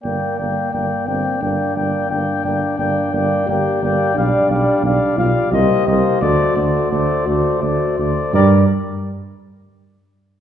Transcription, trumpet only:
\new Staff \with { instrumentName = "Trumpet" } { \time 3/4 \key g \minor \tempo 4 = 87 g''8 g''8 g''8 g''8 g''8 g''8 | g''8 g''8 g''8 g''8 g''8 g''8 | f''8 f''8 f''8 f''8 ees''8 ees''8 | d''8 d''8 d''8 d''8 d''8 d''8 |
d''8 r2 r8 | }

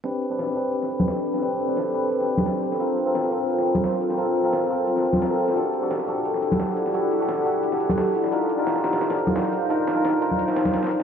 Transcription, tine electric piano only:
\new Staff \with { instrumentName = "Tine electric piano" } { \time 4/4 \key a \minor \tempo 4 = 174 <c' d' g' b'>8. <c' d' g' b'>8. <c' d' g' b'>16 r2 r16 | <c' d' g' b'>8. <c' d' g' b'>8. <c' d' g' b'>16 r2 r16 | <c' f' a' bes'>8. <c' f' a' bes'>8. <c' f' a' bes'>16 r2 r16 | <c' f' a' bes'>8. <c' f' a' bes'>8. <c' f' a' bes'>16 r4. <c' f' a' bes'>8. |
<d' fis' g' a'>8. <d' fis' g' a'>8. <d' fis' g' a'>16 r2 r16 | <d' fis' g' a'>8. <d' fis' g' a'>8. <d' fis' g' a'>16 r2 r16 | <d' ees' f' bes'>8. <d' ees' f' bes'>8. <d' ees' f' bes'>16 r2 r16 | <d' ees' f' bes'>8. <d' ees' f' bes'>8. <d' ees' f' bes'>16 r2 r16 | }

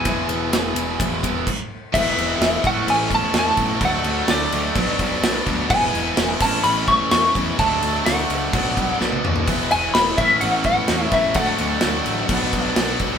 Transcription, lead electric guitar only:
\new Staff \with { instrumentName = "Lead electric guitar" } { \time 4/4 \key a \major \tempo 4 = 127 gis''2. r4 | e''4. fis''8 gis''8 a''8 a''4 | fis''4 d''2 r4 | gis''4. a''8 b''8 cis'''8 cis'''4 |
a''4 fis''2 r4 | r8 gis''8 b''8 e''8 fis''8 fis''4 e''8 | fis''2. r4 | }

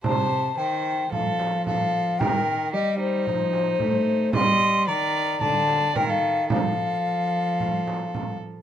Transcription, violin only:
\new Staff \with { instrumentName = "Violin" } { \time 4/4 \key f \mixolydian \tempo 4 = 111 c''4 c''4 a'4 a'4 | bes'4 g'8 ees'2~ ees'8 | ees''4 d''4 d''4 bes'16 a'8. | a'2.~ a'8 r8 | }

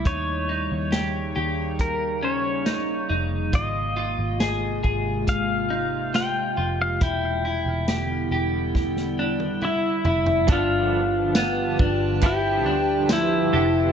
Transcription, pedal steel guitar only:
\new Staff \with { instrumentName = "Pedal steel guitar" } { \time 4/4 \key g \mixolydian \tempo 4 = 69 des''2 bes'8 des''4 r8 | ees''4. r8 f''4 g''8. f''16 | g''2. e'4 | f'2 g'4 e'4 | }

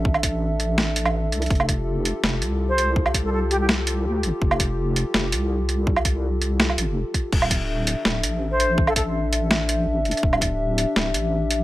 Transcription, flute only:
\new Staff \with { instrumentName = "Flute" } { \time 4/4 \key d \minor \tempo 4 = 165 r1 | r2. r16 c''8 r16 | r8. a'16 a'16 r16 g'16 g'16 r2 | r1 |
r1 | r2. r16 c''8 r16 | r16 a'16 a'16 r2. r16 | r1 | }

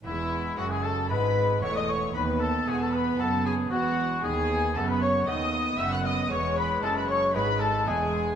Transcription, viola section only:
\new Staff \with { instrumentName = "Viola section" } { \time 4/4 \key e \major \tempo 4 = 115 gis2 gis4 a4 | b2. b4 | b4 b4 b2 | gis2 gis4 gis4 | }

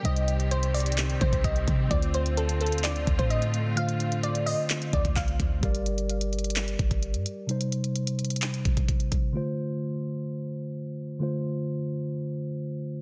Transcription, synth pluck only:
\new Staff \with { instrumentName = "Synth pluck" } { \time 4/4 \key d \phrygian \tempo 4 = 129 ees''4 c''8 d''4 c''8 ees''4 | d''8 c''8 a'8 a'8 d''8. c''16 ees''8 r8 | f''4 d''8 ees''4 d''8 f''8 r8 | r1 |
r1 | r1 | r1 | }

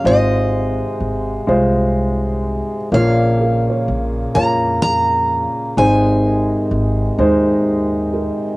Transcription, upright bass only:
\new Staff \with { instrumentName = "Upright bass" } { \clef bass \time 6/8 \key bes \minor \tempo 4. = 42 aes,,4 aes,,8 c,4. | bes,,4 bes,,8 f,4. | aes,,4 aes,,8 ees,4. | }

